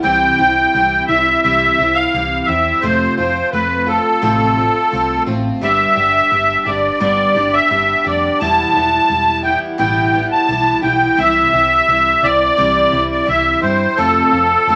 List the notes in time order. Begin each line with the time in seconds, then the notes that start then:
0.03 C2 C3 E3 G3 C4 E4 G5
0.38 C2 G3 C4 E4
0.73 C2 E3 G3 C4 E4
1.07 C2 G3 C4 E4 E5
1.42 C2 C3 E3 G3 C4 E4 E5
1.78 C2 G3 C4 E4
1.94 F5
2.14 C2 E3 G3 C4
2.45 E2 C4 E4 E5
2.50 G3
2.82 F1 F2 C3 F3 A3 C4 F4 C5
3.16 F1 F3 A3 C4 F4 C5
3.52 F1 F3 A3 C4 F4 B4
3.87 F3 A3 C4 F4 A4
4.22 A1 F2 C3 F3 A3 C4 F4
4.57 F3 A3 C4 F4
4.91 C2 F3 A3 C4 F4
5.26 A1 F3 A3 C4 F4
5.61 G1 G2 D3 G3 B3 D4 G4 E5
5.95 G1 G3 B3 D4 G4
6.31 G1 G3 B3 D4 G4
6.65 G1 G3 B3 D4 G4 D5
7.00 G1 G2 D3 G3 B3 D4 G4 D5
7.34 G1 G3 B3 D4 G4
7.53 E5
7.70 G1 G3 B3 D4 G4
8.04 F1 G3 B3 D4 G4 D5
8.40 E1 E2 B2 E3 G3 B3 E4 A5
8.74 E1 E3 G3 B3 E4
9.08 E1 E3 G3 B3 E4
9.43 E3 G3 B3 E4 G5
9.78 A1 E2 B2 E3 G3 B3 E4 G5
10.13 E3 G3 B3 E4
10.32 A5
10.48 B1 E3 G3 B3 E4
10.82 B1 E3 G3 B3 E4 G5
11.17 C2 C3 E3 G3 C4 E4 E5
11.53 C2 G3 C4 E4
11.88 C2 E3 G3 C4 E4
12.22 C2 G3 C4 E4 D5
12.57 C2 C3 E3 G3 C4 E4
12.91 C2 G3 C4 E4
13.12 D5
13.26 C2 E3 G3 C4 E4 E5
13.62 G2 G3 C4 E4 C5
13.97 F1 F2 C3 F3 A3 C4 F4 A4
14.31 F1 F3 A3 C4 F4
14.67 F1 F3 A3 C4 F4